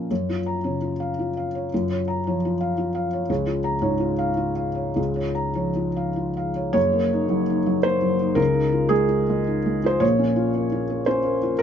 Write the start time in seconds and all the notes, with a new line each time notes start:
Already playing: A#2 F3 A#3 C#4 A#4
0.11 F#2 C#5
0.29 F4
0.46 A#5
0.64 C#3 C#5
0.82 F4
1.00 F5
1.19 F4
1.37 F5
1.55 C#5
1.74 F#2 F4
1.91 C#5
2.08 A#5
2.27 F3 C#5
2.45 F4
2.61 F5
2.78 F4
2.95 F5
3.13 C#5
3.29 C#2 C#5
3.47 F4
3.64 A#5
3.82 G#2 C#5
4.00 F4
4.18 F5
4.37 F4
4.56 F5
4.75 C#5
4.96 C#2 F4
5.16 C#5
5.35 A#5
5.55 F3 C#5
5.76 F4
5.96 F5
6.16 F4
6.37 F5
6.56 C#5
6.73 F#1 F#2 C#5
6.93 A#3
7.13 D#4
7.29 F#3
7.50 D#4
7.66 F#3
7.83 A#3 C5
8.02 F#3
8.20 D#4
8.35 C#2 C#3 A#4
8.54 D#4
8.72 F4
8.89 G#3 G#4
9.09 F4
9.29 G#3
9.47 D#4
9.66 G#3
9.84 F4 C5
10.00 A#1 A#2 C#5
10.19 C#4
10.36 F4
10.55 A#3
10.72 F4
10.90 A#3
11.06 C#4 C5
11.23 A#3
11.43 F4
11.59 A#4